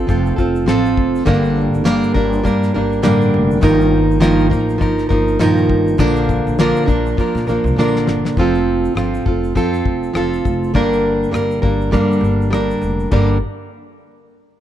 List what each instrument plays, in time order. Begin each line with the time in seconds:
0.07 upright bass F1, steel-string acoustic guitar F3 C4 F4 A4, kick, shaker
0.26 shaker
0.36 upright bass F1, steel-string acoustic guitar C4 F4 A4, kick, shaker
0.55 shaker
0.66 upright bass A1, steel-string acoustic guitar F3 C4 F4 A4, snare, shaker
0.85 shaker
0.97 upright bass F1, kick
1.15 shaker
1.25 upright bass G1, steel-string acoustic guitar G2 D3 G3 A#3 D4 A#4, kick, shaker
1.45 shaker
1.74 upright bass G1, shaker
1.84 steel-string acoustic guitar G2 D3 G3 A#3 D4 A#4, snare, shaker
2.03 shaker
2.14 upright bass G1, steel-string acoustic guitar G3 A#3 D4 A#4, kick
2.33 shaker
2.44 upright bass G2, steel-string acoustic guitar G3 A#3 D4 A#4, kick, shaker
2.63 snare, shaker
2.74 upright bass G1, steel-string acoustic guitar G3 A#3 D4 A#4
2.92 shaker
3.02 upright bass A1, steel-string acoustic guitar G2 D3 G3 A#3 D4 A#4, snare, shaker
3.21 shaker
3.34 upright bass F1
3.51 shaker
3.61 upright bass G1, steel-string acoustic guitar G2 D#3 F3 A#3 D#4 A#4, kick, shaker
3.80 shaker
4.11 shaker
4.20 steel-string acoustic guitar G2 D#3 F3 A#3 D#4 A#4, snare, shaker
4.40 shaker
4.50 upright bass A1, steel-string acoustic guitar F3 A#3 D#4 A#4, kick, shaker
4.69 shaker
4.78 upright bass G1, steel-string acoustic guitar F3 A#3 D#4 A#4, kick, shaker
4.98 snare, shaker
5.09 upright bass G1, steel-string acoustic guitar F3 A#3 D#4 A#4, kick, shaker
5.28 shaker
5.39 upright bass A#1, steel-string acoustic guitar G2 D#3 F3 A#3 D#4 A#4, snare, shaker
5.57 shaker
5.69 upright bass G1, kick
5.87 shaker
5.98 upright bass A#1, steel-string acoustic guitar A#2 D3 F3 A#3 D4 A#4, kick, shaker
6.16 shaker
6.29 kick, shaker
6.47 upright bass A#1, shaker
6.59 steel-string acoustic guitar A#2 D3 F3 A#3 D4 A#4, snare, shaker
6.76 shaker
6.86 upright bass A#1, steel-string acoustic guitar F3 A#3 D4 A#4, kick, shaker
7.06 shaker
7.17 steel-string acoustic guitar F3 A#3 D4 A#4, kick, shaker
7.35 upright bass A#2, snare, shaker
7.47 upright bass A#1, steel-string acoustic guitar F3 A#3 D4 A#4, shaker
7.64 upright bass C2, shaker
7.76 upright bass A#1, steel-string acoustic guitar A#2 D3 F3 A#3 D4 A#4, snare
7.96 snare
8.07 upright bass G1, snare
8.25 snare
8.37 upright bass F1, steel-string acoustic guitar F3 C4 F4 A4, kick, shaker
8.55 shaker
8.85 shaker
8.95 upright bass G1, steel-string acoustic guitar F3 C4 F4 A4, cross-stick, shaker
9.14 shaker
9.26 upright bass F1, steel-string acoustic guitar C4 F4 A4, kick
9.44 shaker
9.55 upright bass F2, steel-string acoustic guitar F3 C4 F4 A4, kick, shaker
9.74 cross-stick, shaker
9.85 upright bass F1, kick
10.03 shaker
10.13 upright bass F1, steel-string acoustic guitar F3 C4 F4 A4, cross-stick, shaker
10.33 shaker
10.45 upright bass F1, kick, shaker
10.64 shaker
10.74 upright bass G1, steel-string acoustic guitar G2 D3 G3 A#3 D4 A#4, kick, shaker
10.93 shaker
11.23 shaker
11.31 upright bass G1, steel-string acoustic guitar G3 A#3 D4 A#4, cross-stick, shaker
11.51 shaker
11.62 upright bass G1, steel-string acoustic guitar G3 A#3 D4 A#4, kick
11.81 shaker
11.91 steel-string acoustic guitar G2 D3 G3 A#3 D4 A#4, upright bass G2, kick, shaker
12.12 shaker
12.21 upright bass G1, shaker
12.41 shaker
12.50 steel-string acoustic guitar G3 A#3 D4 A#4, cross-stick, shaker
12.71 shaker
12.81 upright bass F1, shaker
13.00 shaker
13.11 upright bass G1, steel-string acoustic guitar G2 D3 G3 A#3 D4 A#4, kick, crash